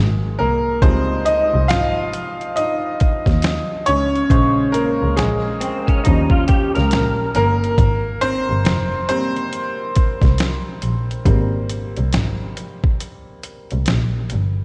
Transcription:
Already playing: G#1 F#3 G#3 C4 F4 G#4
0.39 C2 A#3 A#4
0.82 C#2 F3 G3 G#3 C4 D#4 C5, kick, closed hi-hat
1.25 D#4 D#5, closed hi-hat
1.54 C2
1.68 G#1 F4 F5, finger snap, snare, closed hi-hat
2.13 closed hi-hat
2.41 closed hi-hat
2.56 D#4 D#5, closed hi-hat
3.00 kick, closed hi-hat
3.26 D#2, kick, snare, closed hi-hat
3.42 finger snap, snare, closed hi-hat
3.86 C#2 C#4 C#5, closed hi-hat
4.16 closed hi-hat
4.30 A#1 C#3 G#3 C5, kick, closed hi-hat
4.72 A#3 A#4, closed hi-hat
5.02 C#2
5.17 A#1 G#3 G#4, finger snap, snare, closed hi-hat
5.61 C4, closed hi-hat
5.87 C#4, kick, closed hi-hat
6.04 D#2 F3 G3 C#4 D#4, kick, closed hi-hat
6.30 F4, kick
6.48 G4, kick, closed hi-hat
6.75 C#2 A#4, snare, closed hi-hat
6.91 A#1, finger snap, snare, closed hi-hat
7.35 G1 A#3 A#4, closed hi-hat
7.64 closed hi-hat
7.78 G#1, kick, closed hi-hat
8.21 C4 C5, closed hi-hat
8.49 G1
8.65 F1, finger snap, snare, closed hi-hat
9.09 G3 A#3 C4 C5, closed hi-hat
9.36 closed hi-hat
9.53 closed hi-hat
9.96 kick, closed hi-hat
10.22 C2, kick, snare, closed hi-hat
10.38 finger snap, snare, closed hi-hat
10.82 A#1, closed hi-hat
11.11 closed hi-hat
11.25 G#1 G3 A#3 C4, kick, closed hi-hat
11.69 closed hi-hat
11.96 C2, closed hi-hat
12.12 G#1, finger snap, snare, closed hi-hat
12.57 closed hi-hat
12.84 kick
13.00 closed hi-hat
13.43 closed hi-hat
13.71 C2, closed hi-hat
13.86 A#1, finger snap, snare, closed hi-hat
14.30 G1, closed hi-hat

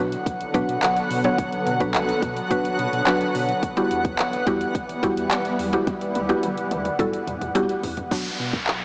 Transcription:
Already playing: D3 F#3 B3 F#5
0.00 B2 F#3 B3 D4 F#4 B4
0.12 closed hi-hat
0.26 B1, kick, closed hi-hat
0.41 closed hi-hat
0.54 B2 F#3 B3 D4 F#4 B4, kick, closed hi-hat
0.68 B2, closed hi-hat
0.82 B1, clap, closed hi-hat
0.96 closed hi-hat
1.10 B2, open hi-hat
1.24 F#3 B3 D4 F#4 C#5, closed hi-hat
1.38 B1, kick, closed hi-hat
1.52 closed hi-hat
1.67 B2, closed hi-hat
1.80 F#3 B3 D4 F#4 B4, kick, closed hi-hat
1.94 B1, clap, closed hi-hat
2.09 closed hi-hat
2.22 B2, kick, closed hi-hat
2.36 closed hi-hat
2.51 B1 F#3 B3 D4 F#4 B4, kick, closed hi-hat
2.65 closed hi-hat
2.79 B2, closed hi-hat
2.93 B2, closed hi-hat
3.07 B1 F#3 B3 D4 F#4 B4, clap, closed hi-hat
3.21 closed hi-hat
3.35 B2, open hi-hat
3.49 closed hi-hat
3.63 E1 E3 G3, kick, closed hi-hat
3.77 G3 B3 E4 F#4 G4, closed hi-hat
3.91 E2, closed hi-hat
4.05 kick, closed hi-hat
4.19 E1, clap, closed hi-hat
4.33 closed hi-hat
4.47 E2 G3 B3 E4 F#4 G4, kick, closed hi-hat
4.61 closed hi-hat
4.75 E1, kick, closed hi-hat
4.89 closed hi-hat
5.03 E2 G3 B3 E4 F#4 G4, kick, closed hi-hat
5.17 E2, closed hi-hat
5.31 E1, clap, closed hi-hat
5.45 closed hi-hat
5.59 E2, open hi-hat
5.73 G3 B3 E4 F#4 G4, closed hi-hat
5.87 E1, kick, closed hi-hat, high tom
6.01 closed hi-hat
6.15 E2, closed hi-hat, high tom
6.29 G3 B3 E4 F#4 G4, closed hi-hat, high tom
6.43 E1, closed hi-hat, mid tom
6.57 closed hi-hat
6.71 E2, closed hi-hat, mid tom
6.85 closed hi-hat, mid tom
6.99 E1 G3 B3 E4 F#4 A4, kick, closed hi-hat, mid tom
7.13 closed hi-hat
7.27 E2, closed hi-hat, mid tom
7.41 E2, closed hi-hat, mid tom
7.55 E1 G3 B3 E4 F#4 G4, closed hi-hat, floor tom
7.69 closed hi-hat
7.83 E2, floor tom, open hi-hat
7.97 closed hi-hat, floor tom
8.11 B1 F#3 B3 D4 F#4, kick, crash, downlifter
8.39 B2
8.53 kick
8.67 B1, clap

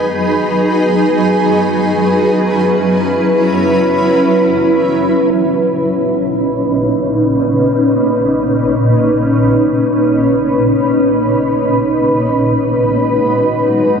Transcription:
Already playing: F#3 D#4 G#4 B4
1.80 C#4 E4 B4
5.31 A#2 C#4 D#4 B4
12.31 G#3 D#4 F#4

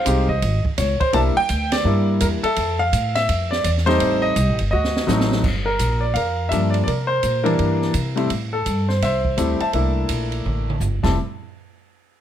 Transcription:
Already playing: C5 F5
0.05 C2 G#3 C4 D#4 G4, kick, hi-hat pedal, ride
0.29 D#5, kick
0.42 G#1, kick, ride
0.64 muted upright bass stroke, kick
0.78 C#2 C#5, kick, snare, hi-hat pedal, ride
1.00 C5, muted upright bass stroke, kick, ride
1.13 C2 G3 A#3 D4 E4 E5 A5, kick, ride
1.36 G5, muted upright bass stroke
1.49 D2, kick, hi-hat pedal, ride
1.72 D5, snare, ride
1.85 G2 G3 A#3 D4 E4
2.21 E2 A#4, kick, hi-hat pedal, ride
2.43 A4 E5, muted upright bass stroke, ride
2.56 F2, kick, ride
2.79 F5
2.93 A2, kick, hi-hat pedal, ride
3.15 E5, snare, ride
3.29 F2, kick, ride
3.51 D5, snare
3.64 E2 D5, kick, hi-hat pedal, ride
3.78 snare
3.86 G3 A3 C4 D#4 G4 C5, snare, ride
4.00 A1, kick, ride
4.22 D#5
4.36 C2, kick, hi-hat pedal, ride
4.49 A1
4.59 G1, ride
4.71 D2 F#4 D#5
4.84 snare
4.96 snare
5.07 A1 F#3 A3 C4 D#4, snare, hi-hat pedal
5.20 snare
5.32 snare
5.44 G1, kick, crash
5.66 A#4
5.79 A#1, kick, hi-hat pedal, ride
6.01 D5
6.14 F2 A#4 F5, kick, ride
6.49 G2 F3 G3 A#3 D4 E5, kick, hi-hat pedal, ride
6.70 D5, ride
6.84 C3 D5, kick, ride
6.88 A#4
7.07 C5
7.23 A#2, kick, hi-hat pedal, ride
7.44 E3 G3 A#3 D4 E4 A#4, ride
7.59 G2, kick, ride
7.82 snare
7.94 C3, kick, hi-hat pedal, ride
8.16 G3 A3 C4 E4, ride
8.30 A2, kick, ride
8.53 A4
8.66 G2, kick, hi-hat pedal, ride
8.89 C5, snare
9.02 C2 C5 E5, kick, snare, ride
9.25 kick
9.37 D2 G3 A3 C4 E4, kick, hi-hat pedal, ride
9.60 E5 A5, muted upright bass stroke, ride
9.73 C2 A3 A#3 D4 E4, kick, ride
10.09 A#1, kick, hi-hat pedal, ride
10.32 ride
10.45 A1, mid tom
10.70 mid tom
10.80 G1, floor tom, hi-hat pedal
11.03 F1 G3 A3 C4 E4 A5, kick, snare, crash

